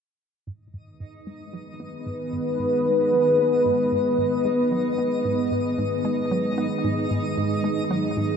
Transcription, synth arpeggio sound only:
0.47 G#2
0.74 G#2
1.00 G#2
1.27 G#3
1.53 F#3
1.80 B3
2.06 G#2
2.33 G#2
2.59 G#2
2.86 G#3
3.13 F#3
3.39 B3
3.66 G#2
3.92 G#2
4.19 G#2
4.45 G#3
4.72 F#3
4.98 B3
5.25 G#2
5.52 G#2
5.78 G#2
6.05 G#3
6.31 F#3
6.58 B3
6.84 G#2
7.11 G#2
7.37 G#2
7.64 G#3
7.91 F#3
8.17 G#2

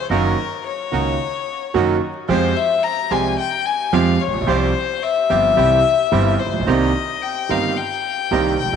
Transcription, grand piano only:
0.10 F#2 D#3 F#3 A#3 C#4 F#4
0.92 C#2 C#3 D#3 A#3 C#4 F#4
1.74 F#2 D#3 F#3 A#3 C#4 F#4
2.29 F2 F3 G#3 C4 G4
3.11 C2 C3 F3 G#3 C4 G4
3.93 F2 F3 G#3 C4 G4
4.27 A1
4.34 A#1
4.41 B1
4.47 C2 C3 F3 G3 C4 G4
5.30 G1 G2 F3 G3 C4 G4
5.56 C2 C3 E3 G3 C4 G4
6.11 G1 G2 E3 G3 C4 G4
6.47 A1
6.54 A#1
6.61 B1
6.67 C2 C3 D#3 A#3 C4 G4
7.49 G1 G2 D#3 A#3 C4 G4
8.31 C2 C3 D#3 A#3 C4 G4
8.66 A#1
8.73 B1

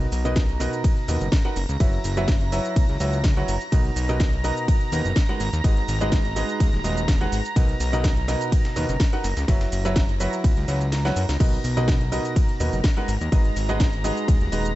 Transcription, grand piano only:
Already playing: B2 D#4 F#4 A#4 B4 D#5
0.25 B2 D#4 F#4 A#4 B4 D#5
0.60 B2 D#4 F#4 A#4 B4 D#5
1.08 B2 D#4 F#4 A#4 B4 D#5
1.45 D#4 F#4 A#4 B4 F#5
1.80 F#3 E4 F#4 B4 C#5 E5
2.17 F#3 E4 F#4 B4 C#5 E5
2.52 F#3 E4 F#4 B4 C#5 E5
3.00 F#3 E4 F#4 B4 C#5 E5
3.37 F#3 E4 F#4 B4 C#5 F#5
3.72 B2 D#4 F#4 A#4 B4 D#5
4.09 B2 D#4 F#4 A#4 B4 D#5
4.44 B2 D#4 F#4 A#4 B4 D#5
4.92 B2 D#4 F#4 A#4 B4 D#5
5.29 G#3 D#4 F#4 A#4 B4 F#5
5.64 G#3 D#4 F#4 G#4 B4 D#5
6.01 G#3 D#4 F#4 G#4 B4 D#5
6.36 G#3 D#4 F#4 G#4 B4 D#5
6.84 G#3 D#4 F#4 G#4 B4 D#5
7.21 G#3 D#4 F#4 G#4 B4 F#5
7.56 B2 D#4 F#4 A#4 B4 D#5
7.93 B2 D#4 F#4 A#4 B4 D#5
8.28 B2 D#4 F#4 A#4 B4 D#5
8.76 B2 D#4 F#4 A#4 B4 D#5
9.13 D#4 F#4 A#4 B4 F#5
9.48 F#3 E4 F#4 B4 C#5 E5
9.85 F#3 E4 F#4 B4 C#5 E5
10.20 F#3 E4 F#4 B4 C#5 E5
10.68 F#3 E4 F#4 B4 C#5 E5
11.05 F#3 E4 F#4 B4 C#5 F#5
11.40 B2 D#4 F#4 A#4 B4 D#5
11.77 B2 D#4 F#4 A#4 B4 D#5
12.12 B2 D#4 F#4 A#4 B4 D#5
12.60 B2 D#4 F#4 A#4 B4 D#5
12.97 G#3 D#4 F#4 A#4 B4 F#5
13.32 G#3 D#4 F#4 G#4 B4 D#5
13.69 G#3 D#4 F#4 G#4 B4 D#5
14.04 G#3 D#4 F#4 G#4 B4 D#5
14.52 G#3 D#4 F#4 G#4 B4 D#5

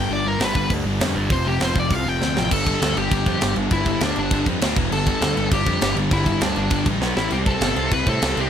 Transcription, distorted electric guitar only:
Already playing: G2 D3
0.11 G2 D3 G3
0.25 G2 D3 G3
0.41 G2 D3 G3
0.55 G2 D3 G3
0.70 G2 D3 G3
0.85 G2 D3 G3
1.00 G2 D3 G3
1.15 G2 D3 G3
1.31 F2 C3 F3
1.47 F2 C3 F3
1.62 F2 C3 F3
1.77 F2 C3 F3
1.91 F2 C3 F3
2.06 F2 C3 F3
2.21 F2 C3 F3
2.36 F2 C3 F3
2.52 G2 D3 G3
2.67 G2 D3 G3
2.82 G2 D3 G3
2.96 G2 D3 G3
3.12 G2 D3 G3
3.27 G2 D3 G3
3.42 G2 D3 G3
3.56 G2 D3 G3
3.72 G2 D3 G3
3.87 G2 D3 G3
4.03 G2 D3 G3
4.18 G2 D3 G3
4.32 G2 D3 G3
4.47 G2 D3 G3
4.62 D3 A3 D4
4.77 E2 B2 E3
4.92 G2 D3 G3
5.08 G2 D3 G3
5.22 G2 D3 G3
5.37 G2 D3 G3
5.52 G2 D3 G3
5.66 G2 D3 G3
5.81 G2 D3 G3
5.96 G2 D3 G3
6.11 G2 D3 G3
6.26 G2 D3 G3
6.41 G2 D3 G3
6.56 G2 D3 G3
6.71 G2 D3 G3
6.86 G2 D3 G3
7.00 B2 F#3 B3
7.16 A2 E3 A3
7.31 C3 G3 C4
7.46 C3 G3 C4
7.61 C3 G3 C4
7.76 C3 G3 C4
7.91 C3 G3 C4
8.06 C3 G3 C4
8.22 C3 G3 C4
8.37 C3 G3 C4

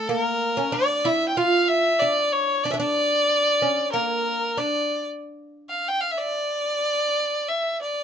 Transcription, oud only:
0.09 A#3
0.57 C#4
0.72 D4
1.05 E4
1.37 F4
2.02 D4
2.65 D4
2.71 C#4 D4
2.80 D4
3.62 C#4
3.94 A#3
4.57 D4

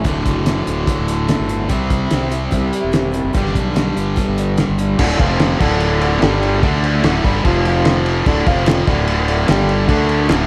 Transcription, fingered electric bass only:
0.05 D1
0.26 F#1
0.68 D1
0.99 D1
1.40 G1
1.70 C2
2.12 C2
2.52 C2
2.84 E1
3.24 F#1
3.35 G1
3.55 B1
3.97 G1
4.28 G1
4.69 G1
4.99 D1
5.19 F1
5.61 D1
6.22 G1
6.63 D2
7.04 D1
7.25 G1
7.45 F1
8.26 D1
8.47 F1
8.88 D1
9.49 G1
9.89 D2
10.30 D1

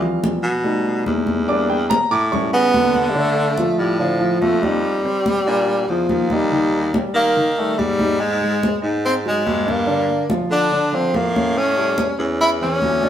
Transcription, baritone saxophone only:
Already playing: D2
0.43 B2
1.06 E2
2.11 A2
2.53 C#3
2.73 D3
3.78 A2
4.41 F2
5.46 A#2
5.88 E2
6.09 D#2
7.14 D#3
7.78 G#2
8.82 G#2
9.45 G2
10.51 D3
11.13 A2
12.18 E2
12.81 D2

